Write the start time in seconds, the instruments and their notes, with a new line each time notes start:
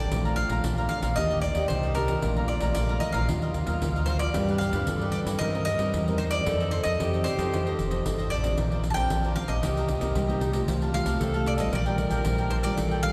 Already playing: nylon-string guitar D4 A4, mandolin D5
0.10 fingered electric bass A#1, nylon-string guitar A#2 F3 A3 D4, tenor saxophone F4, cavaquinho A4 D5 F5 A#5, pandeiro
0.25 cavaquinho D5 F5 A#5, pandeiro
0.36 mandolin F5, muted cavaquinho stroke, pandeiro
0.49 fingered electric bass A#1, nylon-string guitar F3 A3 D4, cavaquinho D5 F5 A#5, pandeiro
0.64 fingered electric bass A#1, nylon-string guitar F2, cavaquinho A4 D5 F5 A#5, pandeiro
0.78 nylon-string guitar F3 A3 D4, cavaquinho D5 F5 A#5, pandeiro
0.89 mandolin F5, pandeiro
1.02 fingered electric bass A#1, cavaquinho D5 F5 A#5, pandeiro
1.16 fingered electric bass D#2, nylon-string guitar D#3 A#3 D4 G4, cavaquinho D4 G4 D5 D#5, tenor saxophone D#4, mandolin D#5, pandeiro
1.30 cavaquinho G4 D5 D#5, pandeiro
1.42 mandolin D5, muted cavaquinho stroke, pandeiro
1.55 fingered electric bass D#2, nylon-string guitar A#3 G4, cavaquinho G4 D5 D#5, pandeiro
1.68 fingered electric bass C2, nylon-string guitar A#2, mandolin C5, pandeiro
1.83 cavaquinho G4 D5 D#5, pandeiro
1.95 nylon-string guitar A#3 D4 G4, cavaquinho D4 G4 D5 D#5, mandolin A#4, pandeiro
2.08 cavaquinho G4 D5 D#5, pandeiro
2.22 fingered electric bass A#1, nylon-string guitar A#2 F3 A3 D4, tenor saxophone F4, cavaquinho A4 D5 F5 A#5, pandeiro
2.36 cavaquinho D5 F5 A#5, pandeiro
2.48 mandolin D5, muted cavaquinho stroke, pandeiro
2.60 fingered electric bass A#1, nylon-string guitar F3 A3 D4, cavaquinho D5 F5 A#5, pandeiro
2.75 fingered electric bass A#1, nylon-string guitar F2, cavaquinho A4 D5 F5 A#5, mandolin D5, pandeiro
2.89 nylon-string guitar F3 A3 D4, cavaquinho D5 F5 A#5, pandeiro
3.00 mandolin D#5, pandeiro
3.12 fingered electric bass A#1, cavaquinho D5 F5 A#5, mandolin F5, pandeiro
3.28 fingered electric bass D#2, nylon-string guitar D#3 F#3 A#3 F4, tenor saxophone F4, cavaquinho F#4 A#4 D#5 F5, pandeiro
3.42 cavaquinho A#4 D#5 F5, pandeiro
3.54 muted cavaquinho stroke, pandeiro
3.66 fingered electric bass D#2, nylon-string guitar F#3 A#3 F4, cavaquinho A#4 D#5 F5, pandeiro
3.82 fingered electric bass D2, nylon-string guitar A#2, pandeiro
3.96 cavaquinho A#4 D#5 F5, pandeiro
4.06 nylon-string guitar F#3 A#3 F4, cavaquinho F#4 A#4 D#5 F5, mandolin C5, pandeiro
4.19 cavaquinho A#4 D#5 F5, mandolin D5, pandeiro
4.34 fingered electric bass G2, nylon-string guitar G3 D4 F4 B4, cavaquinho F4 G4 B4 D5, tenor saxophone G4, pandeiro
4.48 cavaquinho G4 B4 D5, pandeiro
4.58 mandolin F5, muted cavaquinho stroke, pandeiro
4.73 fingered electric bass G2, nylon-string guitar D4 F4 B4, cavaquinho G4 B4 D5, pandeiro
4.87 fingered electric bass G2, nylon-string guitar D3, cavaquinho F4 G4 B4 D5, tenor saxophone A4, pandeiro
5.01 nylon-string guitar D4 F4 B4, cavaquinho G4 B4 D5, pandeiro
5.12 mandolin D5, pandeiro
5.25 fingered electric bass G2, cavaquinho G4 B4 D5, pandeiro
5.39 fingered electric bass G2, nylon-string guitar G3 C4 D#4 A#4, cavaquinho D#4 A#4 C5 D#5, tenor saxophone A#4, mandolin D#5, pandeiro
5.53 cavaquinho A#4 C5 D#5, pandeiro
5.65 mandolin D#5, muted cavaquinho stroke, pandeiro
5.78 fingered electric bass G2, nylon-string guitar C4 D#4 A#4, cavaquinho A#4 C5 D#5, pandeiro
5.94 fingered electric bass E2, nylon-string guitar G3, pandeiro
6.07 nylon-string guitar C4 D#4 A#4, cavaquinho A#4 C5 D#5, pandeiro
6.18 cavaquinho D#4 A#4 C5 D#5, mandolin C5, pandeiro
6.31 cavaquinho A#4 C5 D#5, mandolin D5, pandeiro
6.46 fingered electric bass F2, nylon-string guitar F3 C4 D#4 A4, cavaquinho F4 A4 C5 D#5, tenor saxophone A4, pandeiro
6.60 nylon-string guitar C4 D#4 A4, cavaquinho A4 C5 D#5, pandeiro
6.71 mandolin C5, muted cavaquinho stroke, pandeiro
6.84 fingered electric bass F2, cavaquinho A4 C5 D#5, mandolin D#5, pandeiro
6.99 fingered electric bass F2, nylon-string guitar C3 C4 D#4 A4, cavaquinho F4 A4 C5 D#5, tenor saxophone G4, pandeiro
7.13 cavaquinho A4 C5 D#5, pandeiro
7.24 mandolin C5, pandeiro
7.37 fingered electric bass F2, nylon-string guitar C4 D#4 A4, cavaquinho A4 C5 D#5, pandeiro
7.53 nylon-string guitar F3, cavaquinho F4 A4 C5 D#5, pandeiro
7.66 nylon-string guitar C4 D#4 A4, cavaquinho A4 C5 D#5, pandeiro
7.78 fingered electric bass F1, muted cavaquinho stroke, pandeiro
7.90 cavaquinho A4 C5 D#5, pandeiro
8.06 fingered electric bass G1, nylon-string guitar C3 C4 D#4 A4, pandeiro
8.18 cavaquinho A4 C5 D#5, pandeiro
8.30 fingered electric bass A1, cavaquinho F4 A4 C5 D#5, mandolin D5, pandeiro
8.43 nylon-string guitar F3 C4 D4, cavaquinho A4 C5 D#5, pandeiro
8.58 fingered electric bass A#1, nylon-string guitar A#2, cavaquinho D4 A#4 C5 D5, tenor saxophone F4, pandeiro
8.71 cavaquinho A#4 C5 D5, pandeiro
8.83 muted cavaquinho stroke, pandeiro
8.90 mandolin G5 A5
8.96 fingered electric bass A#1, nylon-string guitar F3 C4 D4, cavaquinho A#4 C5 D5, pandeiro
9.10 fingered electric bass A#1, nylon-string guitar F3, cavaquinho D4 A#4 C5 D5, pandeiro
9.23 cavaquinho A#4 C5 D5, pandeiro
9.36 nylon-string guitar F3 C4 D4, mandolin F5, pandeiro
9.48 fingered electric bass A#1, cavaquinho A#4 C5 D5, mandolin D#5, pandeiro
9.62 fingered electric bass C2, nylon-string guitar C3 A#3 D#4 G4, cavaquinho D#4 A#4 C5 D#5, tenor saxophone G4, pandeiro
9.77 cavaquinho A#4 C5 D#5, pandeiro
9.88 muted cavaquinho stroke, pandeiro
10.00 fingered electric bass C2, nylon-string guitar A#3 D#4 G4, cavaquinho A#4 C5 D#5, pandeiro
10.15 fingered electric bass C2, nylon-string guitar G3, tenor saxophone G4, pandeiro
10.28 nylon-string guitar A#3 D#4 G4, cavaquinho A#4 C5 D#5, pandeiro
10.39 cavaquinho D#4 A#4 C5 D#5, pandeiro
10.53 nylon-string guitar A3 F4 G4, cavaquinho A#4 C5 D#5, pandeiro
10.68 fingered electric bass C2, nylon-string guitar C3, tenor saxophone F4, cavaquinho G4 C5 F5 A5, pandeiro
10.82 cavaquinho C5 F5 A5, pandeiro
10.93 nylon-string guitar A3 F4 G4, mandolin F5, muted cavaquinho stroke, pandeiro
11.06 fingered electric bass C2, cavaquinho C5 F5 A5, pandeiro
11.20 fingered electric bass C2, nylon-string guitar C3, cavaquinho G4 C5 F5 A5, tenor saxophone A4, pandeiro
11.34 nylon-string guitar A3 F4 G4, cavaquinho C5 F5 A5, pandeiro
11.46 mandolin D5, pandeiro
11.57 fingered electric bass A1, nylon-string guitar G3 D4 F4, cavaquinho C5 F5 A5, mandolin D#5, pandeiro
11.72 fingered electric bass A#1, nylon-string guitar A#2, cavaquinho D4 A#4 D5 G5, tenor saxophone A#4, mandolin D5, pandeiro
11.86 nylon-string guitar G3 D4 F4, cavaquinho A#4 D5 G5, pandeiro
11.97 muted cavaquinho stroke, pandeiro
12.10 fingered electric bass A#1, cavaquinho A#4 D5 G5, pandeiro
12.25 fingered electric bass A#1, nylon-string guitar F3 G3 D4 F4, pandeiro
12.38 cavaquinho A#4 D5 G5, pandeiro
12.50 cavaquinho D4 A#4 D5 G5, mandolin C5, pandeiro
12.63 nylon-string guitar G3 D4 F4, cavaquinho A#4 D5 G5, mandolin D5, pandeiro
12.77 fingered electric bass A#1, nylon-string guitar A#2, cavaquinho F4 A#4 D5 G5, tenor saxophone A4, pandeiro
12.91 cavaquinho A#4 D5 G5, pandeiro
13.03 nylon-string guitar G3 D4 F4, mandolin F5, muted cavaquinho stroke, pandeiro